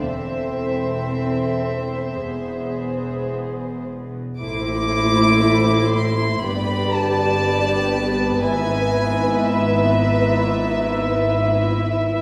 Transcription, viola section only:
\new Staff \with { instrumentName = "Viola section" } { \time 4/4 \key a \minor \tempo 4 = 60 << { a'2 gis'2 | e'2 g'2 | e'1 | } \\ { c'2 b2 | a2 b2~ | b1 | } >> }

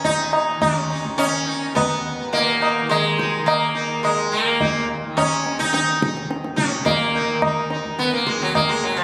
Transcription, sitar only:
\new Staff \with { instrumentName = "Sitar" } { \time 4/4 \tempo 4 = 106 << { r8 ees'8 r8 ees'8 r8 ees'8 r4 | r8 ees'8 r8 ees'8 r8 ees'8 r4 | ees'8 r2 ees'8 r4 | r8 ees'8 ees'8 ees'8 ces'16 bes16 aes16 ges16 bes16 aes16 ges16 f16 | } \\ { ees'4 des'4 des'4 ces'4 | bes4 aes4 bes4 aes8 bes8~ | bes8 r8 des'8. ees'16 ees'4. des'8 | bes4. r2 r8 | } >> }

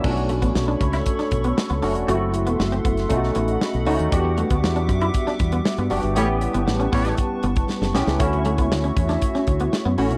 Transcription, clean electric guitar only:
\new Staff \with { instrumentName = "Clean electric guitar" } { \time 4/4 \key b \minor \tempo 4 = 118 r8 a16 b16 r16 d'16 r16 e'16 r16 d'16 r16 b16 r16 b16 d'16 r16 | fis'16 r8 b16 r16 c'16 b16 r8. b16 r8. dis'16 r16 | r8 a16 b16 r16 d'16 r16 e'16 r16 d'16 r16 b16 r16 b16 d'16 r16 | a16 r8 b16 r16 cis'16 b16 r8. b16 r8. cis'16 r16 |
r8 a16 b16 r16 cis'16 r16 d'16 r16 cis'16 r16 b16 r16 b16 cis'16 r16 | }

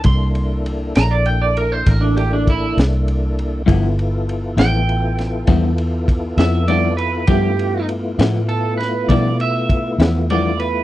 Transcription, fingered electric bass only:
\new Staff \with { instrumentName = "Fingered electric bass" } { \clef bass \time 12/8 \key g \mixolydian \tempo 4. = 66 c,4. bes,,4. a,,4. c,4. | g,,4. a,,4. e,4. f,4. | g,4. a,4. b,4. e,4. | }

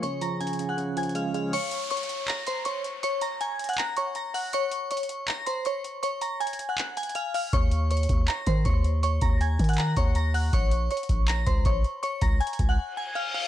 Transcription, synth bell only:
\new Staff \with { instrumentName = "Synth bell" } { \time 4/4 \key ges \lydian \tempo 4 = 160 <des'' des'''>8 <bes'' bes'''>8 <aes'' aes'''>8. <ges'' ges'''>16 r8 <aes'' aes'''>8 <f'' f'''>8 <f'' f'''>8 | <des'' des'''>4 <des'' des'''>4 <bes'' bes'''>8 <c'' c'''>8 <des'' des'''>8 r8 | <des'' des'''>8 <bes'' bes'''>8 <aes'' aes'''>8. <ges'' ges'''>16 <bes'' bes'''>8 <des'' des'''>8 <bes'' bes'''>8 <ges'' ges'''>8 | <des'' des'''>4 <des'' des'''>4 <bes'' bes'''>8 <c'' c'''>8 <des'' des'''>8 r8 |
<des'' des'''>8 <bes'' bes'''>8 <aes'' aes'''>8. <ges'' ges'''>16 r8 <aes'' aes'''>8 <f'' f'''>8 <f'' f'''>8 | <des'' des'''>4 <des'' des'''>4 <bes'' bes'''>8 <c'' c'''>8 <des'' des'''>8 r8 | <des'' des'''>8 <bes'' bes'''>8 <aes'' aes'''>8. <ges'' ges'''>16 <bes'' bes'''>8 <des'' des'''>8 <bes'' bes'''>8 <ges'' ges'''>8 | <des'' des'''>4 <des'' des'''>4 <bes'' bes'''>8 <c'' c'''>8 <des'' des'''>8 r8 |
<des'' des'''>8 <bes'' bes'''>8 <aes'' aes'''>8. <ges'' ges'''>16 r8 <aes'' aes'''>8 <f'' f'''>8 <f'' f'''>8 | }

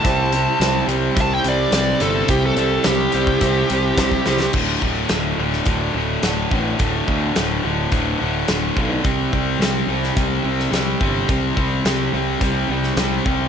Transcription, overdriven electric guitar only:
\new Staff \with { instrumentName = "Overdriven electric guitar" } { \clef bass \time 4/4 \key c \lydian \tempo 4 = 107 <c g c'>8 <c g c'>8 <c g c'>8 <c g c'>8 <c g c'>8 <c g c'>8 <c g c'>8 <c g c'>8 | <c g c'>8 <c g c'>8 <c g c'>8 <c g c'>8 <c g c'>8 <c g c'>8 <c g c'>8 <c g c'>8 | <d, a, d>8 <d, a, d>8 <d, a, d>8 <d, a, d>8 <d, a, d>8 <d, a, d>8 <d, a, d>8 <d, a, d>8 | <d, a, d>8 <d, a, d>8 <d, a, d>8 <d, a, d>8 <d, a, d>8 <d, a, d>8 <d, a, d>8 <d, a, d>8 |
<c g c'>8 <c g c'>8 <c g c'>8 <c g c'>8 <c g c'>8 <c g c'>8 <c g c'>8 <c g c'>8 | <c g c'>8 <c g c'>8 <c g c'>8 <c g c'>8 <c g c'>8 <c g c'>8 <c g c'>8 <c g c'>8 | }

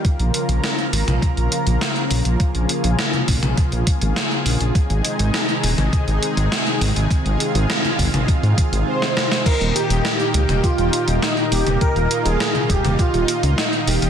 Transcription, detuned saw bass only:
\new Staff \with { instrumentName = "Detuned saw bass" } { \clef bass \time 4/4 \key bes \dorian \tempo 4 = 102 r16 bes,,16 r16 bes,,16 r8 aes,,16 bes,,16 r16 bes,,16 r16 bes,,16 r8 bes,,16 bes,,16 | r16 bes,,16 r16 bes,,16 r8 bes,,16 bes,,16 r16 bes,,16 r16 aes,,16 r8 bes,,16 bes,,16 | r16 aes,,16 r16 aes,,16 r8 ees,,16 aes,,16 r16 aes,,16 r16 aes,,16 r8 aes,,16 aes,,16 | r16 aes,,16 r16 aes,,16 r8 aes,,16 aes,,16 r16 aes,16 r16 aes,,16 r4 |
r16 ees,,16 r16 ees,,16 r8 des,16 ees,,16 r16 ees,,16 r16 ees,,16 r8 ees,,16 ees,,16 | r16 ees,,16 r16 ees,,16 r8 ees,,16 ees,,16 r16 ees,,16 r16 des,16 r8 ees,,16 ees,,16 | }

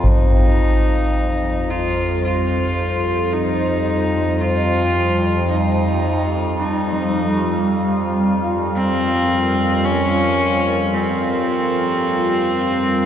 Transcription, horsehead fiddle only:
\new Staff \with { instrumentName = "Horsehead fiddle" } { \time 4/4 \key c \phrygian \tempo 4 = 55 ees'4. f'8 f'4 ees'4 | f'4 ees'4 ees'4. r8 | c'4 des'4 c'2 | }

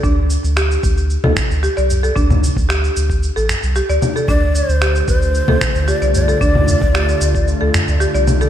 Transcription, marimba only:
\new Staff \with { instrumentName = "Marimba" } { \time 4/4 \key d \minor \tempo 4 = 113 d'4 g'16 r4 a'16 r8 g'16 d''8 a'16 | d'4 g'16 r4 a'16 r8 g'16 d''8 a'16 | d'4 g'16 r4 a'16 r8 g'16 d''8 a'16 | d'4 g'16 r4 a'16 r8 g'16 d''8 a'16 | }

